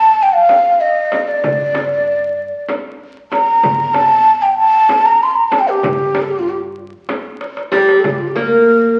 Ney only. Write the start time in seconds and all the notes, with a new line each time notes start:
Already playing: A5
0.23 G5
0.33 F5
0.81 D#5
1.28 D5
3.32 A#5
3.94 A5
4.42 G5
4.59 A5
5.05 A#5
5.23 C6
5.35 A#5
5.48 A5
5.59 G5
5.69 G4
6.22 A4
6.31 G4
6.39 F4
6.49 G4
7.73 G4
8.00 A4
8.09 G4
8.18 F4
8.28 G4
8.36 A#4